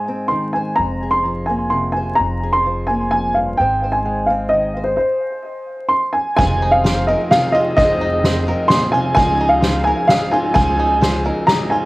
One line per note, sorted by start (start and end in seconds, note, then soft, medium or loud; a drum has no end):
0.00 0.76 G#2 medium
0.00 1.25 G#3 soft
0.00 0.55 C5 soft
0.00 0.26 G#5 medium
0.08 1.49 C4 soft
0.28 0.76 D#3 soft
0.28 0.52 C6 medium
0.53 1.52 C5 soft
0.53 0.79 G#5 medium
0.76 2.16 F1 soft
0.76 2.18 F2 medium
0.76 1.10 A#5 medium
1.03 2.43 G#4 soft
1.11 1.49 C6 medium
1.25 2.65 F3 soft
1.46 2.20 A#3 soft
1.46 1.72 G#5 medium
1.70 2.19 C3 soft
1.70 1.93 C6 medium
1.92 2.18 G#5 medium
1.96 2.93 C5 soft
2.15 3.11 F2 medium
2.15 2.54 A#5 medium
2.20 3.57 F1 soft
2.43 5.47 G#4 soft
2.53 2.90 C6 medium
2.66 3.59 F3 soft
2.87 3.60 A#3 soft
2.87 3.09 G#5 medium
3.11 3.35 F2 soft
3.11 3.36 G#5 medium
3.34 3.59 G2 soft
3.34 3.57 F5 medium
3.57 4.97 G#1 medium
3.57 4.96 G#2 medium
3.57 4.04 G#3 soft
3.57 4.29 C4 soft
3.57 3.82 C5 medium
3.57 3.91 G5 medium
3.84 4.75 C5 soft
3.92 4.29 G#5 medium
4.05 4.96 G#3 soft
4.26 4.97 C4 soft
4.26 4.50 F5 medium
4.49 4.87 D#5 medium
4.53 4.97 D#3 soft
4.77 4.97 C5 medium
4.84 4.95 C5 medium
4.97 5.87 C5 medium
5.89 6.15 C6 medium
6.13 6.35 G#5 medium
6.37 7.12 F1 medium
6.37 7.75 F1 medium
6.37 6.85 F2 medium
6.37 7.77 F2 medium
6.37 7.75 F2 medium
6.37 6.85 C3 medium
6.37 6.83 D#3 medium
6.37 8.43 F3 medium
6.37 6.85 F3 medium
6.37 6.84 G#3 medium
6.37 8.44 C4 medium
6.37 6.84 C4 medium
6.37 7.09 C4 medium
6.37 6.62 F4 medium
6.37 6.86 F4 medium
6.37 8.44 G#4 medium
6.37 8.44 D#5 medium
6.37 6.74 G#5 loud
6.37 kick medium
6.41 7.56 D#4 medium
6.41 7.79 G#4 medium
6.62 6.85 D#4 medium
6.71 7.08 F5 medium
6.84 7.08 D#3 soft
6.84 8.24 F3 medium
6.84 7.08 G#3 soft
6.84 7.07 C4 medium
6.84 7.07 F4 medium
6.84 7.08 C5 medium
6.84 snare medium
6.84 ride soft
7.07 7.30 D#3 soft
7.07 7.31 G#3 soft
7.07 7.32 C4 soft
7.07 7.76 C4 medium
7.07 7.32 F4 soft
7.07 7.31 A#4 medium
7.07 7.32 D#5 medium
7.31 7.78 C3 medium
7.31 7.55 D#3 medium
7.31 7.54 G#3 soft
7.31 7.54 C4 medium
7.31 7.53 F4 medium
7.31 7.55 G#4 medium
7.31 7.55 F5 medium
7.31 snare medium
7.31 ride medium
7.52 7.77 D#3 soft
7.52 7.78 G#3 soft
7.52 7.78 C4 soft
7.52 7.78 F4 soft
7.52 7.77 F4 medium
7.52 7.75 D#5 medium
7.52 ride medium
7.57 7.81 D#4 medium
7.77 8.51 F1 medium
7.77 9.13 F1 medium
7.77 8.24 F2 medium
7.77 9.13 F2 medium
7.77 8.70 F2 medium
7.77 8.24 C3 medium
7.77 8.23 D#3 medium
7.77 8.25 G#3 medium
7.77 8.24 C4 medium
7.77 8.01 F4 medium
7.77 8.26 F4 medium
7.77 9.19 G#4 medium
7.77 8.66 D#5 loud
7.77 kick medium
7.77 ride medium
8.01 8.24 D#4 medium
8.24 8.47 D#3 medium
8.24 9.17 F3 medium
8.24 8.47 G#3 medium
8.24 8.47 C4 medium
8.24 8.45 F4 medium
8.24 8.47 C5 medium
8.24 snare medium
8.24 ride medium
8.47 8.68 D#3 soft
8.47 9.15 F3 medium
8.47 8.69 G#3 soft
8.47 9.17 C4 soft
8.47 8.69 C4 soft
8.47 9.15 C4 medium
8.47 8.70 F4 medium
8.47 9.15 G#4 soft
8.47 8.70 A#4 medium
8.47 9.16 D#5 medium
8.68 8.94 A#2 medium
8.68 9.16 D#3 medium
8.68 9.17 G#3 medium
8.68 9.17 C4 medium
8.68 9.17 F4 medium
8.68 8.93 G#4 medium
8.68 8.93 C6 loud
8.68 snare medium
8.68 ride medium
8.92 9.16 C3 medium
8.92 9.15 F4 medium
8.92 9.13 G#5 medium
8.92 ride medium
9.15 10.52 C#2 medium
9.15 9.90 C#2 medium
9.15 9.63 C#3 medium
9.15 10.52 C#3 medium
9.15 9.63 C#3 medium
9.15 11.85 F3 medium
9.15 9.62 F3 medium
9.15 9.62 G#3 medium
9.15 11.85 C#4 medium
9.15 9.87 C#4 medium
9.15 9.63 D#4 medium
9.15 9.39 F4 medium
9.15 9.64 F4 medium
9.15 11.85 G#4 medium
9.15 11.85 D#5 medium
9.15 9.48 G#5 loud
9.15 kick medium
9.15 ride medium
9.19 10.32 D#4 medium
9.19 10.54 G#4 medium
9.41 9.63 D#4 medium
9.49 9.86 F5 medium
9.62 10.09 F3 medium
9.62 11.01 F3 medium
9.62 10.09 G#3 soft
9.62 10.10 D#4 medium
9.62 10.11 F4 medium
9.62 9.86 C5 medium
9.62 snare medium
9.62 ride medium
9.84 10.53 C#4 medium
9.84 10.10 A#4 medium
9.84 10.09 G#5 medium
10.07 10.53 G#2 medium
10.07 10.33 F3 medium
10.07 10.32 G#3 medium
10.07 10.31 D#4 medium
10.07 10.30 F4 medium
10.07 10.33 G#4 medium
10.07 10.32 F5 medium
10.07 snare medium
10.07 ride medium
10.31 10.54 G#3 soft
10.31 10.57 D#4 medium
10.31 10.54 D#4 soft
10.31 10.54 F4 soft
10.31 10.55 F4 medium
10.31 10.52 G#5 medium
10.31 ride medium
10.54 11.29 C#2 medium
10.54 11.85 C#2 medium
10.54 11.01 C#3 medium
10.54 11.85 C#3 medium
10.54 11.01 F3 medium
10.54 11.02 G#3 medium
10.54 11.02 D#4 medium
10.54 11.03 F4 medium
10.54 10.79 F4 medium
10.54 11.85 G#4 medium
10.54 11.43 G#5 loud
10.54 kick medium
10.54 ride medium
10.79 11.02 D#4 medium
11.01 11.85 F3 medium
11.01 11.25 F3 medium
11.01 11.25 G#3 medium
11.01 11.24 D#4 medium
11.01 11.23 F4 medium
11.01 11.25 C5 medium
11.01 snare medium
11.01 ride soft
11.24 11.47 G#3 soft
11.24 11.85 C#4 medium
11.24 11.48 D#4 soft
11.24 11.48 F4 soft
11.24 11.48 A#4 medium
11.47 11.85 G#2 medium
11.47 11.85 F3 medium
11.47 11.85 G#3 soft
11.47 11.85 D#4 medium
11.47 11.85 F4 medium
11.47 11.71 G#4 medium
11.47 11.72 A#5 medium
11.47 snare medium
11.47 ride medium
11.70 11.85 D#4 medium
11.70 11.85 F4 medium
11.70 11.85 G#5 medium
11.70 ride medium